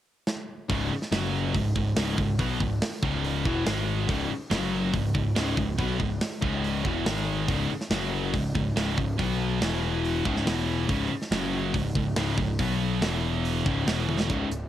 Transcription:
0.27 snare
0.69 picked electric bass C#1, overdriven electric guitar C#2 G#2 C#3, kick, open hi-hat
0.90 muted overdriven electric guitar stroke, muted picked electric bass stroke, muted distorted electric guitar stroke
1.02 snare
1.11 picked electric bass F#1, overdriven electric guitar F#2 C#3 F#3, snare, open hi-hat
1.54 picked electric bass C#1, overdriven electric guitar C#2 G#2, kick, open hi-hat
1.76 picked electric bass C#1, overdriven electric guitar C#2 G#2, kick
1.96 picked electric bass C#1, overdriven electric guitar C#2 G#2 C#3, snare, open hi-hat
2.17 picked electric bass C#1, overdriven electric guitar C#2 G#2, kick
2.38 picked electric bass B1, overdriven electric guitar B2 F#3 B3, kick, open hi-hat
2.60 picked electric bass C#1, overdriven electric guitar C#2 G#2, kick
2.82 snare, open hi-hat
3.02 picked electric bass C#1, overdriven electric guitar C#2 G#2 C#3, kick
3.24 open hi-hat
3.45 picked electric bass E1, overdriven electric guitar E2 B2 E3, kick
3.66 picked electric bass G#1, overdriven electric guitar G#2 D#3 G#3, snare, open hi-hat
4.08 picked electric bass C#1, overdriven electric guitar C#2 G#2 C#3, kick, open hi-hat
4.30 muted overdriven electric guitar stroke, muted picked electric bass stroke, muted distorted electric guitar stroke
4.51 picked electric bass F#1, overdriven electric guitar F#2 C#3 F#3, snare, open hi-hat
4.94 picked electric bass C#1, overdriven electric guitar C#2 G#2, kick, open hi-hat
5.15 picked electric bass C#1, overdriven electric guitar C#2 G#2, kick
5.36 picked electric bass C#1, overdriven electric guitar C#2 G#2 C#3, snare, open hi-hat
5.57 picked electric bass C#1, overdriven electric guitar C#2 G#2, kick
5.78 picked electric bass B1, overdriven electric guitar B2 F#3 B3, kick, open hi-hat
6.00 picked electric bass C#1, overdriven electric guitar C#2 G#2, kick
6.21 snare, open hi-hat
6.41 picked electric bass C#1, overdriven electric guitar C#2 G#2 C#3, kick
6.64 open hi-hat
6.84 picked electric bass E1, overdriven electric guitar E2 B2 E3, kick
7.05 picked electric bass G#1, overdriven electric guitar G#2 D#3 G#3, snare, open hi-hat
7.48 picked electric bass C#1, overdriven electric guitar C#2 G#2 C#3, kick, open hi-hat
7.69 muted picked electric bass stroke, muted overdriven electric guitar stroke, muted distorted electric guitar stroke
7.81 snare
7.90 picked electric bass F#1, overdriven electric guitar F#2 C#3 F#3, snare, open hi-hat
8.34 picked electric bass C#1, overdriven electric guitar C#2 G#2, kick, open hi-hat
8.55 picked electric bass C#1, overdriven electric guitar C#2 G#2, kick
8.75 picked electric bass C#1, overdriven electric guitar C#2 G#2 C#3, snare, open hi-hat
8.98 picked electric bass C#1, overdriven electric guitar C#2 G#2, kick
9.19 picked electric bass B1, overdriven electric guitar B2 F#3 B3, kick, open hi-hat
9.61 picked electric bass E1, overdriven electric guitar E2 B2 E3, snare, open hi-hat
10.05 open hi-hat
10.25 picked electric bass C#1, overdriven electric guitar C#2 G#2 C#3, kick
10.36 snare
10.46 picked electric bass E1, overdriven electric guitar E2 B2 E3, snare, open hi-hat
10.88 picked electric bass C#1, overdriven electric guitar C#2 G#2 C#3, kick, open hi-hat
11.10 muted overdriven electric guitar stroke, muted picked electric bass stroke, muted distorted electric guitar stroke
11.22 snare
11.31 picked electric bass F#1, overdriven electric guitar F#2 C#3 F#3, snare, open hi-hat
11.74 picked electric bass C#1, overdriven electric guitar C#2 G#2, kick, open hi-hat
11.95 picked electric bass C#1, overdriven electric guitar C#2 G#2, kick
12.16 picked electric bass C#1, overdriven electric guitar C#2 G#2 C#3, snare, open hi-hat
12.38 picked electric bass C#1, overdriven electric guitar C#2 G#2, kick
12.59 picked electric bass B1, overdriven electric guitar B2 F#3 B3, kick, open hi-hat
13.01 picked electric bass E1, overdriven electric guitar E2 B2 E3, snare, open hi-hat
13.45 open hi-hat
13.65 picked electric bass C#1, overdriven electric guitar C#2 G#2 C#3, kick
13.86 picked electric bass E1, overdriven electric guitar E2 B2 E3, snare, open hi-hat
14.09 high tom
14.20 snare
14.29 picked electric bass C#1, overdriven electric guitar C#2 G#2 C#3, kick, closed hi-hat
14.50 picked electric bass C#1, closed hi-hat

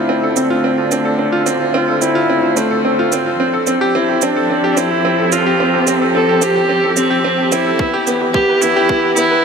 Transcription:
Already playing: cello section D2, string quartet D3 D4 A4, upright piano C4 F4 A4, viola E4
0.09 upright piano C4
0.23 upright piano A4
0.36 upright piano C4, viola C4, shaker
0.50 upright piano F4
0.64 upright piano C4
0.78 upright piano F4
0.91 upright piano C4, viola D4, shaker
0.97 string quartet C5
1.05 upright piano A4
1.19 upright piano C4
1.32 upright piano F4
1.46 upright piano C4, shaker
1.60 upright piano F4
1.74 upright piano C4, viola F4
1.88 upright piano A4
2.01 upright piano C4, viola E4, shaker
2.15 upright piano F4
2.29 upright piano C4
2.43 upright piano F4
2.56 viola A3, upright piano C4, shaker
2.71 upright piano A4
2.85 upright piano C4
2.99 upright piano F4
3.12 viola C4, upright piano C4, shaker
3.26 upright piano F4
3.39 cello section F2, string quartet F3, upright piano C4
3.54 upright piano A4
3.66 string quartet C4, upright piano C4, shaker
3.81 upright piano G4
3.95 upright piano C4, viola E4
4.09 upright piano G4
4.16 string quartet A4
4.22 upright piano C4, viola D4, shaker
4.36 upright piano A4
4.47 upright piano C4, string quartet G4
4.64 upright piano G4
4.77 upright piano C4, viola E4, shaker
4.91 upright piano G4
5.05 upright piano C4
5.18 upright piano A4
5.32 upright piano C4, viola F4, shaker
5.46 upright piano G4
5.60 upright piano C4
5.74 upright piano G4
5.87 upright piano C4, shaker
6.02 upright piano A4
6.15 upright piano C4, viola A4
6.29 upright piano G4
6.42 upright piano C4, viola G4, shaker
6.55 upright piano G4
6.69 upright piano C4
6.83 upright piano A4
6.97 upright piano C4, viola C4, shaker
7.10 upright piano G4
7.24 upright piano C4
7.38 upright piano G4
7.52 upright piano C4, viola E4, shaker
7.66 upright piano A4
7.79 cello section E2, string quartet E3, upright piano B3, kick
7.94 upright piano G4
8.07 upright piano B3, shaker
8.21 upright piano G4
8.34 upright piano B3, viola G4, string quartet B4, kick
8.43 string quartet E4
8.49 upright piano B4
8.61 upright piano B3, viola E4, shaker
8.76 upright piano G4
8.89 upright piano B3, kick
9.04 upright piano G4
9.15 upright piano B3, viola E4, shaker
9.31 upright piano B4

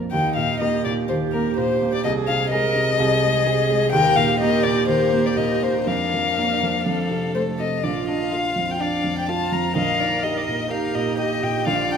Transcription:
Already playing: grand piano A#1 F2 A#3
0.11 grand piano D#2, cello D#4, violin G5
0.36 grand piano A#2, violin F5
0.60 grand piano A#3, cello G4, violin A#4 D#5
0.85 grand piano A#2, violin D5
1.08 grand piano D#2, cello G4, violin C5
1.32 grand piano A#3, violin A#4
1.57 grand piano A#2, violin A#4 C5
1.82 grand piano A#3
1.94 violin D5
2.04 grand piano C2, cello G#4, violin D#5
2.27 grand piano C3, violin F5
2.50 grand piano G#3, violin G#4 D#5, cello A#4
2.76 grand piano C3
2.99 grand piano C2, cello G#4
3.23 grand piano G#3
3.46 grand piano C3, violin G#4
3.70 grand piano G#3
3.93 grand piano D#2, cello G4, violin A#4 G5
4.16 grand piano A#2, violin F5
4.39 grand piano A#3, violin A#4 D#5
4.63 grand piano A#2, violin D5
4.88 grand piano D#2, violin A#4 C5
5.13 grand piano A#3
5.26 violin D5
5.36 grand piano A#2, violin A#4 D#5
5.62 grand piano A#3, violin C5
5.86 grand piano F2, cello D4, violin A#4 F5
6.14 grand piano F3
6.38 grand piano A#3
6.63 grand piano F3
6.85 grand piano F2, violin A4
7.10 grand piano C3
7.34 grand piano A3, violin C5
7.59 grand piano C3, violin D#5
7.83 grand piano A#1, cello F4, violin D5 F5
8.08 grand piano D4, violin D#5
8.32 grand piano F4, violin F5
8.56 grand piano F2
8.71 violin G5
8.80 grand piano D4, cello D4, violin D5 F5
9.04 grand piano F2
9.18 violin G5
9.28 grand piano F4, cello F4, violin F5 A5
9.52 grand piano F2, violin A#5
9.75 grand piano A#1, cello A#4, violin D#5 F5
9.99 grand piano D#4, violin D5
10.23 grand piano G4, violin D#5
10.37 violin D5
10.47 grand piano A#2, violin D#5
10.71 grand piano D#4, cello G4, violin A#4 F5
10.95 grand piano A#2, violin D#5
11.19 grand piano G4, violin D#5
11.43 grand piano A#2, violin G5
11.66 grand piano A#1, cello F4, violin D5 F5
11.91 grand piano D4, violin G5

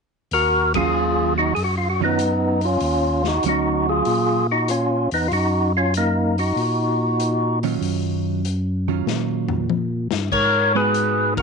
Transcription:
0.31 tonewheel organ D#2 F#4 A#4, open hi-hat
0.74 hollow-body jazz guitar D#3 F#3 C#4 F4, tonewheel organ F4 G#4, kick, ride
1.38 tonewheel organ D#4 F#4
1.55 tonewheel organ F#2 G#4, open hi-hat
1.64 tonewheel organ F#4
1.77 tonewheel organ F4
1.90 tonewheel organ F#4
2.01 hollow-body jazz guitar D#3 F#3 C#4 F4, tonewheel organ D#4
2.05 tonewheel organ B3
2.19 closed hi-hat
2.61 tonewheel organ F4, open hi-hat
2.66 tonewheel organ C#4
2.80 tonewheel organ D#2, open hi-hat
3.24 tonewheel organ D#4 F#4, snare
3.43 tonewheel organ D2, hollow-body jazz guitar F#3 C#4, closed hi-hat
3.48 tonewheel organ D#4 F#4
3.89 tonewheel organ F4 G#4
4.05 tonewheel organ A#2, open hi-hat
4.51 tonewheel organ D#4 F#4
4.68 tonewheel organ C#4 F4, closed hi-hat
5.11 tonewheel organ E2 B3 D#4, open hi-hat
5.28 tonewheel organ F#2 F4, open hi-hat
5.33 tonewheel organ D#4 F#4
5.77 tonewheel organ C#4 F4
5.94 tonewheel organ A#3 D#4, closed hi-hat
6.38 tonewheel organ D#4 F#4, open hi-hat
6.56 tonewheel organ A#2, open hi-hat
7.20 closed hi-hat
7.63 hollow-body jazz guitar D#3 F#3 C#4 F4, open hi-hat
7.81 tonewheel organ F#2, open hi-hat
8.45 closed hi-hat
8.88 hollow-body jazz guitar D#3 F#3 C#4 F4
9.06 tonewheel organ A#2, snare
9.48 floor tom
9.70 high tom
10.11 tonewheel organ G2, snare
10.31 tonewheel organ G#2 A#4 C#5, kick, crash
10.75 hollow-body jazz guitar G#3 B3 F#4, tonewheel organ G#4 B4
10.94 closed hi-hat
11.37 tonewheel organ A#4, kick, ride

